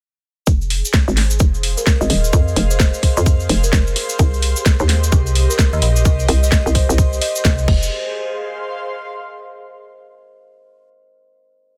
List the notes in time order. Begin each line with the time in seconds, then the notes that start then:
0.47 F1 G#4, kick, cabasa
0.61 cabasa
0.70 open hi-hat
0.79 C5
0.85 cabasa
0.94 kick, snare, cabasa
1.08 G#1, cabasa
1.17 snare, open hi-hat
1.30 cabasa
1.38 F1 F5, kick, cabasa
1.54 cabasa
1.63 open hi-hat
1.77 A#4, cabasa
1.87 kick, snare, cabasa
1.97 G#1 D#5 C6
2.01 cabasa
2.10 D#1 D#5, open hi-hat
2.24 cabasa
2.33 F2, kick, cabasa
2.48 cabasa
2.56 F1, open hi-hat
2.71 C5, cabasa
2.80 C5, kick, snare, cabasa
2.94 cabasa
3.03 kick, open hi-hat
3.17 F2, cabasa
3.26 kick, cabasa
3.40 cabasa
3.49 F1, open hi-hat
3.63 A#4, cabasa
3.73 F1, kick, snare, cabasa
3.87 cabasa
3.96 G#4, open hi-hat
4.09 cabasa
4.19 C2 G4, kick, cabasa
4.34 cabasa
4.42 open hi-hat
4.47 D#5
4.56 cabasa
4.66 kick, snare, cabasa
4.79 D#2, cabasa
4.89 snare, open hi-hat
5.04 cabasa
5.12 C2, kick, cabasa
5.26 cabasa
5.35 open hi-hat
5.50 A#4, cabasa
5.59 kick, snare, cabasa
5.73 D#2 D#5, cabasa
5.82 A#1 D#5, open hi-hat
5.96 cabasa
6.05 C2, kick, cabasa
6.19 cabasa
6.28 C2, open hi-hat
6.43 D#5, cabasa
6.52 kick, snare, cabasa
6.66 C2, cabasa
6.75 C5, kick, open hi-hat
6.89 C2 C5, cabasa
6.98 kick, cabasa
7.13 cabasa
7.21 D#5, open hi-hat
7.35 cabasa
7.45 C2, kick, snare, cabasa
7.58 cabasa
7.68 F1 G#4, kick, crash
7.77 C5
7.83 cabasa
8.07 F5
8.13 C6